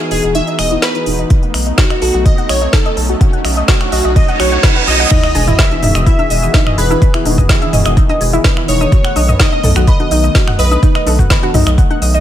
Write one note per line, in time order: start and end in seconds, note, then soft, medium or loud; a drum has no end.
0.00 1.27 E3 medium
0.00 3.17 B3 medium
0.00 5.07 D#4 medium
0.00 1.26 F#4 medium
0.00 1.26 G#4 medium
0.00 riser medium
0.11 0.20 E1 medium
0.11 0.37 G#4 loud
0.11 0.18 D#5 medium
0.11 open hi-hat loud
0.24 0.41 E1 loud
0.24 0.30 D#5 medium
0.24 closed hi-hat soft
0.35 0.41 D#4 medium
0.35 0.61 E5 loud
0.35 closed hi-hat medium
0.47 0.53 D#5 loud
0.47 closed hi-hat soft
0.59 0.77 E1 medium
0.59 0.63 G#4 medium
0.59 0.84 D#5 loud
0.59 finger snap medium
0.59 open hi-hat loud
0.71 0.77 E4 loud
0.71 closed hi-hat soft
0.82 1.30 B4 medium
0.82 0.87 B4 loud
0.82 snare loud
0.82 closed hi-hat medium
0.95 0.99 E4 medium
0.95 closed hi-hat soft
1.06 1.24 E1 medium
1.06 1.16 D#4 medium
1.06 open hi-hat loud
1.19 1.25 D#5 medium
1.19 closed hi-hat soft
1.30 5.07 A3 medium
1.30 1.40 F#4 medium
1.30 kick loud
1.30 closed hi-hat medium
1.43 1.46 F#5 medium
1.43 closed hi-hat soft
1.54 1.72 B1 medium
1.54 1.61 D#5 medium
1.54 finger snap medium
1.54 open hi-hat loud
1.67 1.72 D#5 medium
1.67 closed hi-hat soft
1.78 1.84 D#4 medium
1.78 2.00 F#4 medium
1.78 kick loud
1.78 snare loud
1.78 closed hi-hat loud
1.90 1.96 D#5 medium
1.90 finger snap medium
1.90 closed hi-hat soft
2.02 2.11 B1 medium
2.02 2.27 F#4 medium
2.02 2.06 A4 medium
2.02 open hi-hat loud
2.14 2.31 B1 loud
2.14 2.20 F#4 medium
2.14 closed hi-hat soft
2.26 2.35 F#4 medium
2.26 2.51 D#5 loud
2.26 kick loud
2.26 closed hi-hat medium
2.38 2.42 F#5 medium
2.38 closed hi-hat soft
2.49 2.67 B1 medium
2.49 2.75 C#5 loud
2.49 2.56 D#5 medium
2.49 finger snap medium
2.49 open hi-hat loud
2.62 2.68 D#5 medium
2.62 closed hi-hat soft
2.73 2.80 D#4 medium
2.73 3.21 A4 medium
2.73 kick loud
2.73 snare loud
2.73 closed hi-hat medium
2.86 2.91 D#5 medium
2.86 closed hi-hat soft
2.97 3.15 B1 loud
2.97 3.01 A4 medium
2.97 open hi-hat loud
3.09 3.15 F#4 loud
3.09 closed hi-hat soft
3.21 5.09 C#4 medium
3.21 3.30 F#4 medium
3.21 kick loud
3.21 closed hi-hat medium
3.33 3.37 F#5 medium
3.33 closed hi-hat soft
3.45 3.62 B1 loud
3.45 3.51 D#5 medium
3.45 finger snap medium
3.45 open hi-hat loud
3.57 3.63 D#5 medium
3.57 closed hi-hat soft
3.68 3.78 F#4 medium
3.68 3.91 F#4 medium
3.68 kick loud
3.68 snare loud
3.68 closed hi-hat loud
3.81 3.84 F#5 medium
3.81 finger snap medium
3.81 closed hi-hat soft
3.92 4.01 B1 loud
3.92 4.17 F#4 medium
3.92 3.99 D#5 medium
3.92 open hi-hat loud
4.04 4.22 B1 loud
4.04 4.10 D#5 medium
4.04 closed hi-hat soft
4.16 4.26 F#4 medium
4.16 4.41 D#5 loud
4.16 kick loud
4.16 closed hi-hat medium
4.16 reverse cymbal medium
4.28 4.32 F#5 medium
4.28 closed hi-hat soft
4.40 4.58 B1 medium
4.40 4.49 F#4 medium
4.40 4.65 C#5 loud
4.40 finger snap medium
4.40 open hi-hat loud
4.52 4.56 F#5 medium
4.52 closed hi-hat soft
4.63 4.73 F#4 medium
4.63 4.87 B4 loud
4.63 kick loud
4.63 snare loud
4.63 closed hi-hat medium
4.76 4.80 F#5 medium
4.76 closed hi-hat soft
4.87 5.05 B1 loud
4.87 4.97 F#4 medium
4.87 5.60 D#5 loud
4.87 open hi-hat loud
5.00 5.03 F#5 medium
5.11 12.20 D#3 medium
5.11 8.88 E3 medium
5.11 12.20 B3 medium
5.11 5.18 D#4 loud
5.11 8.88 F#4 medium
5.11 8.88 G#4 medium
5.11 5.18 D#5 medium
5.11 kick loud
5.11 closed hi-hat medium
5.11 crash loud
5.11 sub drop medium
5.11 cabasa soft
5.24 5.30 D#5 loud
5.24 5.29 D#6 medium
5.24 finger snap medium
5.24 closed hi-hat soft
5.35 5.53 E1 loud
5.35 5.39 G#4 medium
5.35 5.39 G#5 medium
5.35 open hi-hat loud
5.35 high conga loud
5.35 cabasa medium
5.47 5.53 E4 medium
5.47 5.53 E5 medium
5.47 closed hi-hat medium
5.47 mid tom medium
5.47 cabasa soft
5.59 5.63 B4 loud
5.59 6.06 E5 loud
5.59 5.63 B5 medium
5.59 kick loud
5.59 snare loud
5.59 closed hi-hat medium
5.59 cabasa soft
5.71 5.75 E4 medium
5.71 5.75 E5 medium
5.71 closed hi-hat soft
5.71 high conga medium
5.83 5.92 E1 loud
5.83 5.92 D#4 medium
5.83 5.92 D#5 medium
5.83 mid tom loud
5.83 open hi-hat loud
5.83 cabasa medium
5.95 6.12 E1 loud
5.95 6.01 D#5 medium
5.95 6.01 D#6 medium
5.95 finger snap medium
5.95 closed hi-hat medium
5.95 cabasa soft
6.06 6.16 E4 medium
6.06 6.79 E5 loud
6.06 6.16 E5 medium
6.06 kick loud
6.06 closed hi-hat medium
6.06 cabasa soft
6.19 6.22 E5 medium
6.19 6.22 E6 medium
6.19 closed hi-hat soft
6.19 high conga loud
6.30 6.48 E1 medium
6.30 6.37 D#5 medium
6.30 6.37 D#6 medium
6.30 open hi-hat loud
6.30 cabasa medium
6.43 6.49 D#5 medium
6.43 6.49 D#6 medium
6.43 closed hi-hat medium
6.43 cabasa soft
6.54 6.60 D#4 loud
6.54 6.61 D#5 medium
6.54 kick loud
6.54 snare loud
6.54 closed hi-hat medium
6.54 high conga medium
6.54 cabasa soft
6.66 6.72 D#5 loud
6.66 6.72 D#6 medium
6.66 finger snap medium
6.66 mid tom medium
6.78 6.96 E1 medium
6.78 6.82 G#4 medium
6.78 7.49 B4 medium
6.78 6.82 G#5 medium
6.78 open hi-hat loud
6.78 cabasa medium
6.90 6.96 E4 loud
6.90 6.96 E5 medium
6.90 closed hi-hat medium
6.90 high conga loud
6.90 cabasa soft
7.02 7.06 B4 loud
7.02 7.06 B5 medium
7.02 kick loud
7.02 closed hi-hat medium
7.02 cabasa soft
7.14 7.18 E4 medium
7.14 7.18 E5 medium
7.14 finger snap medium
7.14 closed hi-hat soft
7.25 7.43 E1 loud
7.25 7.35 D#4 medium
7.25 7.35 D#5 medium
7.25 open hi-hat loud
7.25 high conga loud
7.25 cabasa medium
7.38 7.44 D#5 medium
7.38 7.44 D#6 medium
7.38 kick medium
7.38 mid tom medium
7.38 cabasa soft
7.49 7.59 E4 medium
7.49 7.59 E5 medium
7.49 kick loud
7.49 snare loud
7.49 closed hi-hat medium
7.49 cabasa soft
7.62 7.65 E5 medium
7.62 7.65 E6 medium
7.62 closed hi-hat soft
7.62 high conga medium
7.73 7.82 E1 medium
7.73 7.80 D#5 medium
7.73 7.80 D#6 medium
7.73 mid tom loud
7.73 open hi-hat loud
7.73 cabasa medium
7.86 8.03 E1 loud
7.86 7.91 D#5 medium
7.86 7.91 D#6 medium
7.86 finger snap medium
7.86 closed hi-hat medium
7.86 cabasa soft
7.97 8.03 D#4 loud
7.97 8.03 D#5 medium
7.97 kick loud
7.97 closed hi-hat medium
7.97 cabasa soft
8.09 8.15 D#5 loud
8.09 8.15 D#6 medium
8.09 closed hi-hat soft
8.09 high conga loud
8.21 8.39 E1 medium
8.21 8.25 G#4 medium
8.21 8.25 G#5 medium
8.21 open hi-hat loud
8.21 cabasa medium
8.33 8.39 E4 loud
8.33 8.39 E5 medium
8.33 closed hi-hat medium
8.33 cabasa soft
8.44 8.48 B4 loud
8.44 8.48 B5 medium
8.44 kick loud
8.44 snare loud
8.44 closed hi-hat medium
8.44 high conga medium
8.44 cabasa soft
8.57 8.61 E4 medium
8.57 8.61 E5 medium
8.57 finger snap medium
8.68 8.86 E1 loud
8.68 8.78 D#4 medium
8.68 9.41 C#5 loud
8.68 8.78 D#5 medium
8.68 open hi-hat loud
8.68 cabasa medium
8.81 8.87 D#5 medium
8.81 8.87 D#6 medium
8.81 closed hi-hat medium
8.81 high conga loud
8.81 cabasa soft
8.92 12.20 A3 medium
8.92 9.02 F#4 medium
8.92 9.02 F#5 medium
8.92 kick loud
8.92 closed hi-hat medium
8.92 cabasa soft
9.05 9.08 F#5 medium
9.05 9.08 F#6 medium
9.05 finger snap medium
9.05 closed hi-hat soft
9.16 9.34 B1 loud
9.16 9.22 D#5 medium
9.16 9.22 D#6 medium
9.16 open hi-hat loud
9.16 high conga loud
9.16 cabasa medium
9.28 9.34 D#5 medium
9.28 9.34 D#6 medium
9.28 closed hi-hat medium
9.28 mid tom medium
9.28 cabasa soft
9.40 9.46 D#4 loud
9.40 9.46 D#5 medium
9.40 9.87 D#5 loud
9.40 kick loud
9.40 snare loud
9.40 closed hi-hat medium
9.40 cabasa soft
9.52 9.58 D#5 loud
9.52 9.58 D#6 medium
9.52 closed hi-hat soft
9.52 high conga medium
9.63 9.73 B1 medium
9.63 9.68 A4 medium
9.63 9.68 A5 medium
9.63 mid tom loud
9.63 open hi-hat loud
9.63 cabasa medium
9.76 9.93 B1 loud
9.76 9.82 F#4 loud
9.76 9.82 F#5 medium
9.76 finger snap medium
9.76 closed hi-hat medium
9.76 cabasa soft
9.87 9.91 B4 loud
9.87 10.60 D#5 loud
9.87 9.91 B5 medium
9.87 kick loud
9.87 closed hi-hat medium
9.87 cabasa soft
10.00 10.03 F#4 medium
10.00 10.03 F#5 medium
10.00 closed hi-hat soft
10.00 high conga loud
10.11 10.29 B1 medium
10.11 10.21 D#4 medium
10.11 10.21 D#5 medium
10.11 open hi-hat loud
10.11 cabasa medium
10.24 10.30 D#5 medium
10.24 10.30 D#6 medium
10.24 closed hi-hat medium
10.24 cabasa soft
10.35 10.45 F#4 medium
10.35 kick loud
10.35 snare loud
10.35 closed hi-hat medium
10.35 high conga medium
10.35 cabasa soft
10.48 10.51 F#5 medium
10.48 10.51 F#6 soft
10.48 finger snap medium
10.48 mid tom medium
10.59 10.77 B1 loud
10.59 11.30 B4 medium
10.59 10.65 D#5 medium
10.59 10.65 D#6 medium
10.59 open hi-hat loud
10.59 cabasa medium
10.71 10.77 D#5 medium
10.71 10.77 D#6 medium
10.71 closed hi-hat medium
10.71 high conga medium
10.71 cabasa soft
10.83 10.89 D#4 loud
10.83 10.89 D#5 medium
10.83 kick loud
10.83 closed hi-hat medium
10.83 cabasa soft
10.95 11.01 D#5 loud
10.95 11.01 D#6 medium
10.95 finger snap medium
10.95 closed hi-hat soft
11.06 11.24 B1 loud
11.06 11.11 A4 medium
11.06 11.10 A5 medium
11.06 open hi-hat loud
11.06 high conga medium
11.06 cabasa medium
11.19 11.25 F#4 loud
11.19 11.25 F#5 medium
11.19 kick medium
11.19 closed hi-hat medium
11.19 mid tom medium
11.19 cabasa soft
11.30 11.34 B4 loud
11.30 11.34 B5 medium
11.30 kick loud
11.30 snare loud
11.30 closed hi-hat medium
11.30 cabasa soft
11.43 11.46 F#4 medium
11.43 11.46 F#5 medium
11.43 closed hi-hat soft
11.43 high conga medium
11.54 11.63 B1 medium
11.54 11.64 D#4 medium
11.54 11.64 D#5 medium
11.54 mid tom loud
11.54 open hi-hat loud
11.54 cabasa medium
11.66 11.84 B1 loud
11.66 11.72 D#5 medium
11.66 11.72 D#6 medium
11.66 finger snap medium
11.66 closed hi-hat medium
11.66 cabasa soft
11.78 11.88 F#4 medium
11.78 11.88 F#5 medium
11.78 kick loud
11.78 closed hi-hat medium
11.78 cabasa soft
11.90 11.94 F#5 medium
11.90 11.94 F#6 medium
11.90 closed hi-hat soft
11.90 high conga loud
12.02 12.19 B1 medium
12.02 12.08 D#5 medium
12.02 12.08 D#6 medium
12.02 open hi-hat loud
12.02 cabasa medium
12.14 12.20 D#5 medium
12.14 12.20 D#6 medium
12.14 closed hi-hat soft
12.14 cabasa soft